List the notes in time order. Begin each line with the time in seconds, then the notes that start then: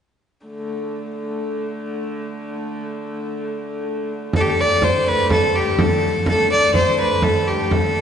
0.47 D3 A3
4.33 D3 A3 A4, frame drum
4.41 G4
4.49 A4
4.59 D5, frame drum
4.82 C5, frame drum
5.08 B4
5.30 A4, frame drum
5.54 G4, frame drum
5.79 A4, frame drum
6.03 frame drum
6.26 A4, frame drum
6.50 D5, frame drum
6.74 C5, frame drum
6.99 B4, frame drum
7.22 A4, frame drum
7.47 G4
7.71 A4, frame drum